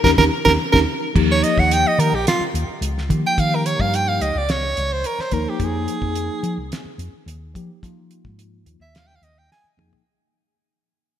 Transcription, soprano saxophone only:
0.04 A#4
0.18 A#4
0.45 A#4
0.72 A#4
1.32 C#5
1.43 D#5
1.59 F#5
1.73 G5
1.87 D#5
1.99 A#4
2.15 G4
2.28 F4
3.26 G5
3.39 F5
3.55 A#4
3.66 C#5
3.81 F5
3.95 G5
4.08 F5
4.22 D#5
4.38 D5
4.51 C#5
4.92 C5
5.06 A#4
5.21 C5
5.33 A#4
5.49 G4
5.64 G#4
8.82 E5
8.97 F5
9.07 G5
9.16 F5
9.23 D#5
9.38 G5
9.52 G#5

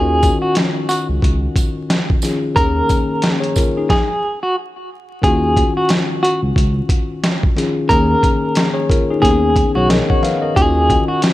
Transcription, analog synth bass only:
Already playing: D#2
1.09 C#2
1.23 C#2
2.57 D#2
5.23 D#2
6.43 C#2
6.56 C#2
7.90 D#2
9.23 D#2
9.76 B1
10.57 D#2

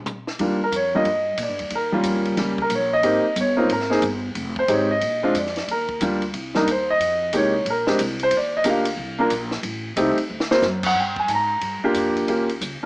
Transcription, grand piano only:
0.40 G3 A#3 D4 F4
0.64 A#4
0.76 C#5
0.95 G3 A#3 D4 F4 D#5
1.43 D5
1.75 A#4
1.92 G3 A#3 C#4 F4
2.37 G3 A#3 C#4 G4
2.62 A#4
2.75 C#5
2.93 D#5
3.03 A#3 C4 D#4 G4
3.40 C#5
3.57 A#3 C4 D#4 F4
3.73 A#4
3.90 A#3 C4 D#4 G#4
4.59 C5
4.68 G#3 C4 D#4 G4 C#5
4.91 D#5
5.23 G#3 C4 D4 F4
5.38 D5
5.71 A#4
6.02 G3 A#3 D4 F4
6.55 G3 A#3 D4 D#4 A#4
6.71 C5
6.90 D#5
7.33 G#3 A#3 D#4 G4 C#5
7.70 A#4
7.87 G#3 C4 D4 G4
8.23 C5
8.37 D5
8.57 D#5
8.64 A#3 D4 F4 G4
8.70 F5
9.19 A#3 D4 F4 A#4
9.96 A3 C4 D#4 G4
10.51 A#3 C4 F#4 C5
10.86 F#5
11.00 G5
11.19 G#5
11.30 A5
11.35 A#5
11.84 A#3 D4 F4 G4
12.28 A#3 C#4 F4 G4

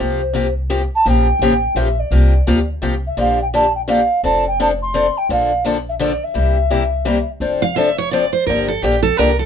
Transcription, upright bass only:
0.00 C2
1.06 A#1
1.39 A1
1.75 A#1
2.11 C2
2.47 D2
2.82 C2
3.17 A#1
4.23 F1
5.29 A#1
6.35 C2
7.40 F1
8.47 G1
8.82 A#1
9.19 C2

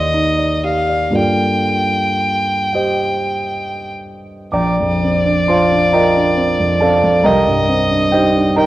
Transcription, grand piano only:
Already playing: D#2 D5
0.14 D#4
0.38 D5
0.64 G4
0.89 D5
1.10 G2 A#3 F4 A4 D5
2.73 G4 C5 D#5 G5
4.52 A#1 D5 G5 A#5 D6
4.80 F2
5.03 C4
5.26 D4
5.48 F4 C5 F5 A5 C6
5.72 D4
5.93 F4 A#4 D#5 G5 A#5
6.16 D4
6.37 C4
6.60 F2
6.81 C4 A4 D5 F5 A5
7.03 F2
7.23 C2 A#4 D#5 G5 A#5
7.47 G2
7.69 C4
7.91 D4
8.12 D#4 G4 C5 D#5 G5
8.35 D4
8.56 D#4 A#4 D#5 G5 A#5

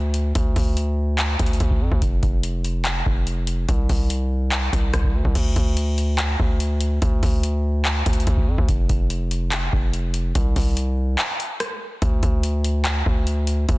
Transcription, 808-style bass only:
Already playing: D2
0.35 D2
0.56 D2
1.39 D2
1.60 D2
1.81 F2
1.92 D2
2.02 F1
2.23 F1
3.06 F1
3.69 C2
3.89 C2
4.73 C2
4.94 C2
5.14 D2
5.25 C2
5.35 D2
5.56 D2
6.39 D2
7.02 D2
7.23 D2
8.06 D2
8.27 D2
8.48 F2
8.58 D2
8.69 F1
8.89 F1
9.73 F1
10.35 C2
10.56 C2
12.02 D2
12.23 D2
13.06 D2
13.69 D2

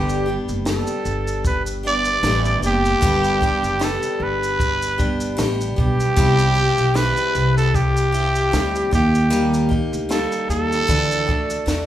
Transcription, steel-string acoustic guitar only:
Already playing: G2 D3 G3 B3 D4 G4
0.26 G3 B3 D4 G4
0.65 G3 B3 D4 G4
1.83 G3 B3 D4 G4
2.23 G3 B3 D4 G4
2.62 G3 B3 D4 G4
3.01 G2 D3 G3 B3 D4 G4
3.41 G3 B3 D4 G4
3.79 G3 B3 D4 G4
4.98 G3 B3 D4 G4
5.37 G3 B3 D4 G4
5.76 G3 B3 D4 G4
6.16 C3 G3 C4 E4 G4
6.55 E4 G4
6.59 C4
6.94 G3 C4 E4 G4
8.12 C4 E4 G4
8.52 G3 C4 E4 G4
8.91 A#3 D#4 G4
9.30 D#3 G3 A#3 D#4 G4
9.69 D#4 G4
9.73 A#3
10.09 G3 A#3 D#4 G4
10.87 D3 E3 A3 D4 F#4 D5
11.27 D4 F#4 D5
11.31 A3
11.66 A3 D4 F#4 D5

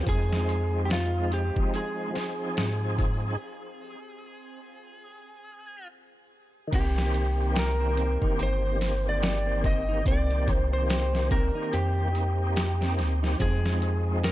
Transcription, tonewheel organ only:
0.03 F3 C4
0.10 G#3 D#4
2.11 F3 C4
2.17 D#4 G#4
6.67 D#3 A#3
6.74 C4 G4
8.76 D#3 A#3
8.82 C4 G4
10.02 D#3 A#3
10.08 C4 G4
12.11 A#3 D#4
12.18 C4 G4
13.36 F3 C4
13.43 G#3 D#4

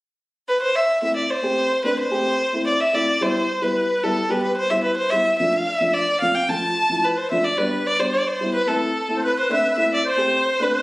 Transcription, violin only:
0.49 B4
0.62 C5
0.76 E5
1.03 E5
1.16 D5
1.30 C5
1.85 B4
2.00 C5
2.67 D5
2.80 E5
2.95 D5
3.22 C5
3.62 B4
4.03 A4
4.30 B4
4.43 B4
4.57 C5
4.70 E5
4.84 B4
4.97 C5
5.10 E5
5.38 E5
5.53 F5
5.67 E5
5.94 D5
6.21 F5
6.35 G5
6.49 A5
7.04 B4
7.17 C5
7.31 E5
7.44 D5
7.58 B4
7.87 D5
8.00 C5
8.13 D5
8.27 C5
8.54 B4
8.68 A4
9.25 B4
9.39 C5
9.53 E5
9.78 E5
9.94 D5
10.08 C5
10.63 B4
10.75 C5

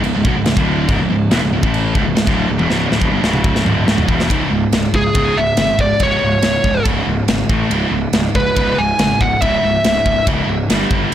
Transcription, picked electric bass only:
0.04 C#1
0.16 C#1
0.25 B1
0.37 C#1
0.47 C#1
0.56 D1
0.89 C#1
1.00 C#1
1.11 C#1
1.32 E1
1.43 C#1
1.53 C#1
1.63 A1
1.95 C#1
2.07 C#1
2.17 C#1
2.27 D1
2.49 C#1
2.60 E1
2.70 C#1
2.91 D1
3.02 E1
3.12 G1
3.22 C#1
3.65 D1
3.87 C#1
4.09 E1
4.30 C#1
4.51 C#1
4.72 C#1
4.94 C#1
5.15 C#1
5.36 C#1
5.57 G#1
5.79 C#1
6.00 C#1
6.22 C#1
6.43 C#1
6.64 C#1
6.86 C#1
7.07 C#1
7.28 G#1
7.49 A1
7.70 C#1
7.91 C#1
8.13 C#1
8.35 C#1
8.57 C#1
8.78 C#1
8.99 G#1
9.21 C#1
9.42 C#1
9.63 C#1
9.85 C#1
10.06 C#1
10.27 C#1
10.47 C#1
10.69 G1
10.91 G1

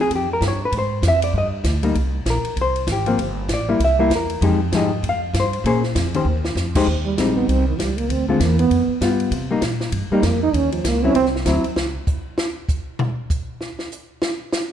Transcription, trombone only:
7.05 G3
7.17 G#3
7.36 B3
7.49 C4
7.68 D#3
7.80 G3
7.97 A#3
8.11 C4
8.29 G#3
8.42 A#3
8.60 B3
10.12 G3
10.25 A#3
10.43 D#4
10.55 C#4
10.72 F3
10.86 A#3
11.05 C#4
11.16 C4

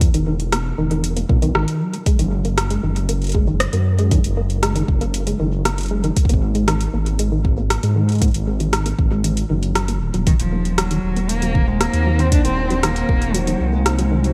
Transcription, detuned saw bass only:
0.14 E1
0.78 E1
1.29 B1
1.42 B1
1.55 G#1
2.19 F#1
2.83 F#1
3.73 F#2
4.24 F#1
4.88 F#1
5.40 F#1
6.29 G#1
6.93 G#1
7.83 G#2
8.34 G#1
8.99 G#1
9.50 F#1
10.01 D#1
10.14 D#1
10.40 D#1
11.04 D#1
11.93 D#2
12.45 D#1
13.09 D#1
13.60 C2

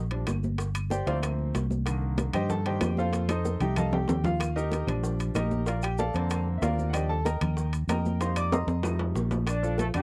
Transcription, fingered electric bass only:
Already playing: A#1
0.28 G1
1.07 D2
1.55 C2
2.33 G2
2.81 F2
3.60 C2
4.08 D#2
4.87 A#1
5.35 A#1
6.14 F2
6.62 D#2
7.41 D#2
7.88 F2
8.67 F2
9.15 A#1
9.95 F2

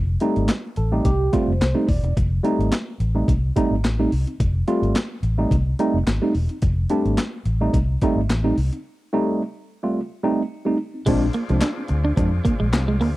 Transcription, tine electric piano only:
0.21 G3 A3 C4 D#4
0.77 A4
0.92 G3 A3 C4 D#4 G4
1.05 G4
1.32 G3 A3 C4 F4 C5
1.61 C5
1.74 G3 A3 C4 D#4
1.89 D5
2.04 C4 D#4
2.44 G3 A3 C4 D#4
3.15 G3 A3 C4 D#4
3.56 G3 A3 C4 D#4
3.99 G3 A3 C4 D#4
4.27 C4 D#4
4.67 G3 A3 C4 F4
5.38 G3 A3 C4 D#4
5.79 G3 A3 C4 D#4
6.22 G3 A3 C4 D#4
6.50 C4 D#4
6.90 G3 A3 C4 D4
7.61 G3 A3 C4 D#4
8.02 G3 A3 C4 D#4
8.44 G3 A3 C4 D#4
8.72 C4 D#4
9.13 G3 A3 C4 D#4
9.83 G3 A3 C4 F4
10.23 G3 A3 C4 D#4
10.65 G3 A3 C4 D#4
10.94 C4 D#4
11.08 F3 G#3 C4 D4
11.50 F3 G#3 C4 D4
11.77 C4 D4
11.90 C4 D4
12.17 F3 G#3 C4 D4
12.44 C4 D4
12.72 C4 D4

